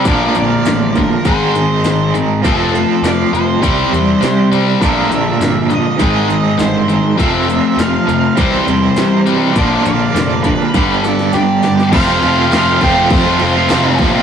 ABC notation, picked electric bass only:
X:1
M:4/4
L:1/8
Q:1/4=101
K:F
V:1 name="Picked electric bass" clef=bass
B,,, B,,, A,,,2 _A,,,2 A,,,2 | F,,,2 F,,, F,,, C,, E,, C,2 | B,,, B,,, G,,,2 _A,,,2 G,,,2 | F,,,2 F,,, F,,, C,, E,, C,2 |
B,,, B,,, F,,,2 G,,,2 G,,,2 | F,,, F,,, F,,, F,,, F,, F,,, F,,, B,,, |]